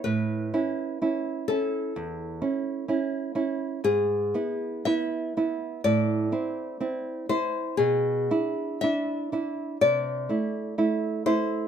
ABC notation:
X:1
M:4/4
L:1/8
Q:1/4=62
K:A
V:1 name="Nylon-string guitar"
B3 A4- A | [K:Am] ^G2 e2 d3 c | ^G2 e2 d3 c |]
V:2 name="Nylon-string guitar"
A,, [CE] [CE] [CE] E,, [CE] [CE] [CE] | [K:Am] ^G,, [B,E] [B,E] [B,E] A,, [CE] [CE] [CE] | B,, [DE] [DE] [DE] C, [A,E] [A,E] [A,E] |]